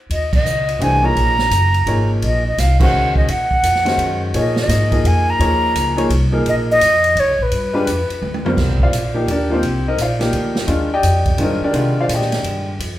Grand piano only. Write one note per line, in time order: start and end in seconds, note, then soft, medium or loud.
0.80 1.01 E3 medium
0.80 1.01 A3 soft
0.80 1.02 D4 soft
0.80 1.02 G4 soft
0.80 1.02 C5 medium
1.03 1.34 F3 medium
1.03 1.34 A#3 soft
1.03 1.34 D#4 soft
1.03 1.34 G#4 soft
1.03 1.35 C#5 medium
1.86 2.40 F3 medium
1.86 2.40 A#3 soft
1.86 2.41 D#4 soft
1.86 2.41 G#4 soft
1.86 2.41 C#5 medium
2.80 3.25 D#3 medium
2.80 3.26 G#3 medium
2.80 3.26 C#4 medium
2.80 3.26 F#4 medium
2.80 3.26 C5 medium
3.85 4.31 D#3 medium
3.85 4.31 G#3 medium
3.85 4.31 C#4 medium
3.85 4.31 F#4 medium
3.85 4.32 C5 medium
4.34 4.88 F3 medium
4.34 4.88 A#3 medium
4.34 4.88 D#4 medium
4.34 4.88 G#4 medium
4.34 4.88 C#5 medium
4.91 5.37 F3 medium
4.91 5.37 A#3 medium
4.91 5.37 D#4 medium
4.91 5.37 G#4 medium
4.91 5.37 D#5 medium
5.39 5.93 F3 medium
5.39 5.93 A#3 medium
5.39 5.93 D#4 medium
5.39 5.93 G#4 medium
5.39 5.94 C#5 medium
5.97 6.09 F3 medium
5.97 6.09 A#3 medium
5.97 6.09 D#4 medium
5.97 6.09 G#4 medium
5.97 6.09 C#5 medium
6.32 6.78 F3 medium
6.32 6.78 A#3 medium
6.32 6.78 D#4 medium
6.32 6.78 G#4 medium
6.32 6.79 A#4 medium
7.74 7.85 G#3 medium
7.74 7.85 D4 medium
7.74 7.85 F4 medium
7.74 7.86 G4 medium
7.74 7.86 B4 medium
8.45 8.90 G3 medium
8.45 8.90 C4 soft
8.45 8.82 F4 medium
8.45 8.90 A#4 medium
8.45 8.82 C5 medium
8.83 9.26 F4 medium
8.83 9.26 C5 medium
8.83 9.26 D5 medium
8.83 9.26 F5 medium
9.14 9.26 F3 medium
9.14 9.26 A#3 medium
9.14 9.26 D#4 medium
9.14 9.27 G4 medium
9.31 9.52 D4 medium
9.31 9.52 G4 medium
9.31 9.51 A#4 medium
9.31 9.51 D5 medium
9.50 9.61 F3 medium
9.50 9.62 A#3 medium
9.50 9.62 D#4 medium
9.50 9.62 F4 medium
9.54 9.85 C4 medium
9.54 9.85 G4 medium
9.54 9.85 C5 medium
9.88 9.99 D#4 medium
9.88 9.99 A#4 medium
9.88 9.99 C5 medium
9.88 9.99 D#5 medium
10.02 10.54 F4 medium
10.02 10.54 C5 medium
10.02 10.54 D5 medium
10.02 10.54 F5 medium
10.19 10.65 F3 medium
10.19 10.65 A#3 medium
10.19 10.66 D#4 medium
10.19 10.66 G4 medium
10.67 10.88 D#3 medium
10.67 10.88 G#3 medium
10.67 10.89 D4 medium
10.67 10.89 F4 medium
10.94 11.37 G4 medium
10.94 11.37 D5 medium
10.94 11.37 D#5 medium
10.94 11.37 G5 medium
11.39 11.72 D#3 medium
11.39 11.72 G#3 medium
11.39 11.63 D4 medium
11.39 11.73 F4 medium
11.39 11.63 A#4 soft
11.39 11.63 C5 medium
11.39 11.62 D#5 medium
11.43 11.63 D#4 soft
11.64 11.96 D4 medium
11.64 11.96 G4 medium
11.64 11.96 A#4 medium
11.64 11.96 D5 medium
11.73 12.72 D3 medium
11.73 12.72 D#3 medium
11.73 12.72 G#3 medium
11.73 11.99 F4 medium
12.00 12.11 F4 medium
12.00 12.11 C5 medium
12.00 12.11 D5 medium
12.00 12.11 F5 medium
12.14 12.66 G4 medium
12.14 12.66 D5 medium
12.14 12.66 D#5 medium
12.14 12.66 G5 medium